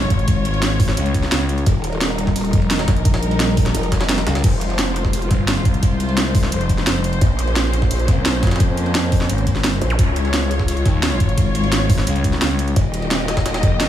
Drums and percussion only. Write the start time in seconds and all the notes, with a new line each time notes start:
0.10 kick, closed hi-hat, ride
0.19 closed hi-hat
0.28 kick, closed hi-hat, ride
0.45 closed hi-hat, ride
0.54 ride
0.62 snare, closed hi-hat, ride
0.80 kick, open hi-hat, ride
0.88 snare
0.97 closed hi-hat, ride
1.06 closed hi-hat
1.14 kick, closed hi-hat, ride
1.23 snare, ride
1.32 snare, closed hi-hat, ride
1.49 closed hi-hat, ride
1.58 closed hi-hat, ride
1.66 kick, closed hi-hat, ride
1.84 closed hi-hat, ride
1.93 ride
2.01 snare, closed hi-hat, ride
2.19 closed hi-hat, ride
2.27 kick, snare
2.36 closed hi-hat, open hi-hat
2.45 closed hi-hat
2.53 kick, closed hi-hat, ride
2.62 ride
2.70 snare, closed hi-hat, ride
2.79 snare, ride
2.88 kick, snare, closed hi-hat, ride
2.97 closed hi-hat
3.05 kick, closed hi-hat, ride
3.14 snare, ride
3.23 closed hi-hat
3.31 ride
3.40 snare, closed hi-hat, ride
3.57 kick, open hi-hat, ride
3.66 snare, closed hi-hat
3.75 closed hi-hat, ride
3.83 closed hi-hat
3.92 kick, snare, closed hi-hat, ride
4.01 snare, ride
4.09 snare, closed hi-hat, ride
4.18 snare, ride
4.27 snare, closed hi-hat, ride
4.35 snare, closed hi-hat, ride
4.44 kick, closed hi-hat, crash, ride
4.61 closed hi-hat, ride
4.70 ride
4.79 snare, closed hi-hat, ride
4.96 closed hi-hat, ride
5.05 kick, snare
5.13 closed hi-hat, open hi-hat
5.22 closed hi-hat
5.31 kick, snare, closed hi-hat, ride
5.48 snare, closed hi-hat, ride
5.65 kick, closed hi-hat, ride
5.74 closed hi-hat
5.83 kick, closed hi-hat, ride
6.00 closed hi-hat, ride
6.09 ride
6.17 snare, closed hi-hat, ride
6.35 kick, open hi-hat, ride
6.43 snare
6.52 closed hi-hat, ride
6.61 closed hi-hat
6.69 kick, closed hi-hat, ride
6.78 snare, ride
6.87 snare, closed hi-hat, ride
7.04 closed hi-hat, ride
7.13 closed hi-hat, ride
7.21 kick, closed hi-hat, ride
7.39 closed hi-hat, ride
7.47 ride
7.56 snare, closed hi-hat, ride
7.73 closed hi-hat, ride
7.82 kick, snare
7.91 closed hi-hat, open hi-hat
7.99 closed hi-hat
8.08 kick, snare, closed hi-hat, ride
8.25 snare, closed hi-hat, ride
8.43 kick, snare, closed hi-hat, ride
8.47 snare, ride
8.51 snare, closed hi-hat, ride
8.56 snare, ride
8.60 kick, closed hi-hat, ride
8.77 closed hi-hat, ride
8.86 ride
8.95 snare, closed hi-hat, ride
9.12 kick, open hi-hat, ride
9.21 snare
9.29 closed hi-hat, ride
9.38 closed hi-hat
9.47 kick, closed hi-hat, ride
9.55 snare, ride
9.64 snare, closed hi-hat, ride
9.82 closed hi-hat, ride
9.90 closed hi-hat, ride
9.99 kick, closed hi-hat, ride
10.16 closed hi-hat, ride
10.25 ride
10.33 snare, closed hi-hat, ride
10.51 closed hi-hat, ride
10.60 kick, snare
10.68 closed hi-hat, open hi-hat
10.77 closed hi-hat
10.86 kick, snare, closed hi-hat, ride
11.03 snare, closed hi-hat, ride
11.20 kick, closed hi-hat, ride
11.29 closed hi-hat
11.38 kick, closed hi-hat, ride
11.55 closed hi-hat, ride
11.64 ride
11.72 snare, closed hi-hat, ride
11.90 kick, open hi-hat, ride
11.98 snare
12.07 closed hi-hat, ride
12.16 closed hi-hat
12.24 kick, closed hi-hat, ride
12.33 snare, ride
12.42 snare, closed hi-hat, ride
12.59 closed hi-hat, ride
12.68 closed hi-hat, ride
12.76 kick, closed hi-hat, ride
12.94 closed hi-hat, ride
13.02 ride
13.11 snare, closed hi-hat, ride
13.28 snare, closed hi-hat, ride
13.37 kick, snare, ride
13.46 snare, closed hi-hat, ride
13.54 snare, closed hi-hat, ride
13.63 kick, snare, closed hi-hat, ride
13.80 snare, closed hi-hat, ride